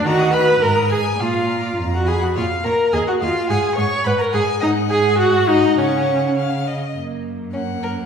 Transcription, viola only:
\new Staff \with { instrumentName = "Viola" } { \time 2/4 \key bes \phrygian \tempo 4 = 104 ges'8 ces''8 bes'8 aes'8 | f'4 r16 ges'16 aes'16 ges'16 | \key fis \major eis'8 ais'8 gis'16 fis'16 eis'8 | gis'8 cis''8 b'16 ais'16 gis'8 |
dis'8 gis'8 fis'8 dis'8 | cis'4 r4 | ais4 ais4 | }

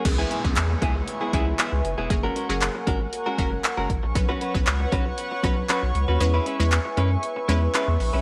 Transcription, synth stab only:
\new Staff \with { instrumentName = "Synth stab" } { \time 4/4 \key cis \dorian \tempo 4 = 117 <e b cis' gis'>8 r16 <e b cis' gis'>4 r8. <e b cis' e'>4 r8 | <fis ais cis' gis'>8 r16 <fis ais cis' gis'>4 r8. <fis ais cis' ais'>4 r8 | <fis b cis' b'>8 r16 <fis b cis' b'>4 r8. <fis b cis' b'>4 r8 | <gis cis' e' b'>8 r16 <gis cis' e' b'>4 r8. <gis cis' e' b'>4 r8 | }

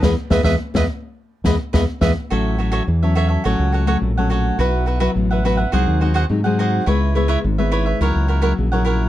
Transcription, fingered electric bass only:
\new Staff \with { instrumentName = "Fingered electric bass" } { \clef bass \time 4/4 \key e \major \tempo 4 = 105 e,16 r16 e,16 e,16 r16 e,16 r4 e,16 r16 e,16 r16 e,16 r16 | a,,4 e,4 a,,16 cis,8. ais,,4 | b,,4 a,,4 bis,,16 dis,8. gis,4 | cis,4 gis,,4 cis,16 cis,8. ais,,4 | }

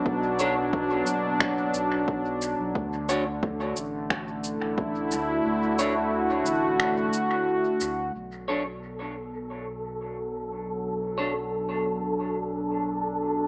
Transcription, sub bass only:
\new Staff \with { instrumentName = "Sub bass" } { \clef bass \time 4/4 \key b \minor \tempo 4 = 89 b,,4. fis,,4 b,,4~ b,,16 b,,16 | d,4. a,,4~ a,,16 a,,8. d,8 | d,4. a,,4 r4 d,8 | b,,1~ |
b,,1 | }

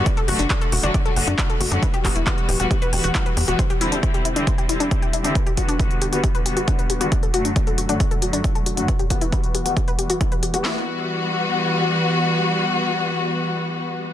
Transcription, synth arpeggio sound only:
\new Staff \with { instrumentName = "Synth arpeggio sound" } { \time 4/4 \key e \minor \tempo 4 = 136 d''16 a'16 fis'16 d'16 d''16 a'16 fis'16 d'16 d''16 a'16 fis'16 d'16 d''16 a'16 fis'16 d'16 | b'16 g'16 fis'16 e'16 b'16 r16 g'16 fis'16 g'16 b'16 g'16 fis'16 e'16 b'16 g'16 fis'16 | c''16 g'16 e'16 d'16 c''16 g'16 e'16 d'16 c''16 g'16 e'16 d'16 c''16 g'16 e'16 d'16 | b'16 g'16 fis'16 d'16 b'16 r16 g'16 fis'16 g'16 b'16 g'16 fis'16 d'16 b'16 g'16 fis'16 |
d''16 a'16 fis'16 d'16 d''16 a'16 fis'16 d'16 d''16 a'16 fis'16 d'16 d''16 a'16 fis'16 d'16 | b'16 g'16 fis'16 e'16 b'16 r16 g'16 fis'16 g'16 b'16 g'16 fis'16 e'16 b'16 g'16 fis'16 | e'8 r2. r8 | r1 | }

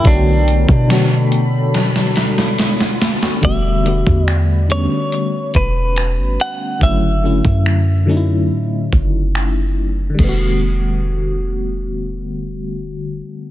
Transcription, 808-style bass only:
\new Staff \with { instrumentName = "808-style bass" } { \clef bass \time 4/4 \key e \dorian \tempo 4 = 71 b,,8. b,2. r16 | e,,8. e,4 r8. e,,8. g,,16 r8 | fis,,8. fis,4~ fis,16 a,8 fis,,4. | e,,1 | }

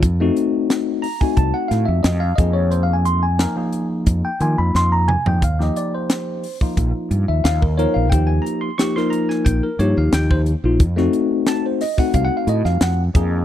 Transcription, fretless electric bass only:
\new Staff \with { instrumentName = "Fretless electric bass" } { \clef bass \time 4/4 \key f \minor \tempo 4 = 89 f,8 r4. c,16 r16 a,16 f,16 f,8 f,8~ | f,4. r8 f,16 r16 ees16 f,16 f,8. f,16 | ees,8 r4. bes,,16 r16 g,16 ees,16 ees,8. bes,,16 | ees,8 r4. bes,,16 r16 g,16 ees,16 ees,8. bes,,16 |
f,8 r4. c,16 r16 a,16 f,16 f,8 f,8 | }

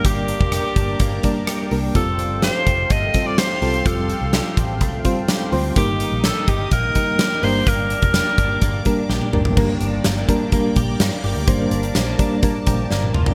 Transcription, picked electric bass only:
\new Staff \with { instrumentName = "Picked electric bass" } { \clef bass \time 4/4 \key g \minor \tempo 4 = 126 g,,8. f,,8 r16 g,,8 g,,8 r4 c,8 | f,,8. g,,8 r16 f,,8 g,,8 r4 c,8 | f,,8. c,8 r16 a,,8 c,8 r4 d,8 | g,,8. bes,,8 r16 g,,8 bes,,8 r4 g,,8 |
g,,8. f,,8 r16 g,,8 g,,8 r8 bes,,16 r16 g,,16 g,,16 | g,,8 g,,8 g,,8 r4 bes,,8 g,16 r16 g,,16 d,16 | g,,8 g,,8 bes,,8 r4 bes,,8 g,,8 f,,8 | }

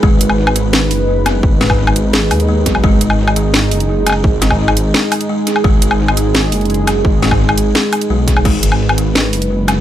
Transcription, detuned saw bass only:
\new Staff \with { instrumentName = "Detuned saw bass" } { \clef bass \time 4/4 \key gis \minor \tempo 4 = 171 gis,,2~ gis,,8 fis,,4. | gis,,2~ gis,,8 dis,4 b,,8 | gis,,2~ gis,,8 fis,,4. | gis,,2 r2 |
gis,,2~ gis,,8 fis,,4. | gis,,2 r4 b,,4 | gis,,2~ gis,,8 fis,,4. | }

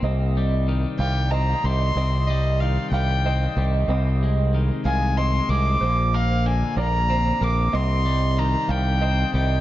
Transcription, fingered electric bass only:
\new Staff \with { instrumentName = "Fingered electric bass" } { \clef bass \time 6/8 \key c \minor \tempo 4. = 62 c,4. c,4 c,8 | c,4. c,4 c,8 | c,4. c,4 c,8 | bes,,4. bes,,4 bes,,8 |
c,4. c,4 c,8 | }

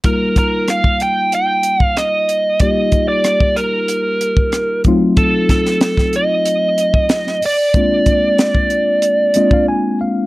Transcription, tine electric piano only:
\new Staff \with { instrumentName = "Tine electric piano" } { \time 4/4 \key ees \major \tempo 4 = 93 << { r1 | r1 | r1 | r2 r8 ees''16 f''16 aes''8 f''8 | } \\ { <g bes ees' f'>1 | <g bes ees' f' g'>2.~ <g bes ees' f' g'>8 <ges a c' ees' f'>8~ | <ges a c' ees' f'>2.~ <ges a c' ees' f'>8 r8 | <aes bes c' d' f'>2~ <aes bes c' d' f'>8 <aes bes c' d' f'>4. | } >> }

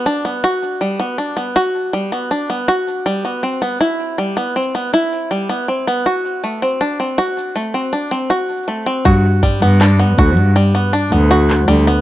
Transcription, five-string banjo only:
\new Staff \with { instrumentName = "Five-string banjo" } { \time 4/4 \key g \major \tempo 4 = 80 d'16 b16 fis'8 g16 b16 d'16 b16 fis'8 g16 b16 d'16 b16 fis'8 | g16 b16 c'16 b16 e'8 g16 b16 c'16 b16 e'8 g16 b16 c'16 b16 | fis'8 a16 c'16 d'16 c'16 fis'8 a16 c'16 d'16 c'16 fis'8 a16 c'16 | fis'8 g16 b16 d'16 b16 fis'8 g16 b16 d'16 b16 fis'8 g16 b16 | }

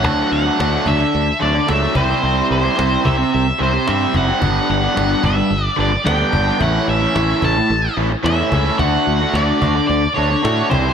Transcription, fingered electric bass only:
\new Staff \with { instrumentName = "Fingered electric bass" } { \clef bass \time 4/4 \key d \major \tempo 4 = 110 d,8 d,8 d,8 d,8 d,8 d,8 cis,8 c,8 | c,8 c,8 c,8 c,8 c,8 c,8 g,8 fis,,8 | g,,8 g,,8 g,,8 g,,8 g,,8 g,,8 d,8 g,,8 | a,,8 a,,8 a,,8 a,,8 a,,8 a,,8 e,8 cis,8 |
d,8 d,8 d,8 d,8 d,8 d,8 a,8 c,8 | }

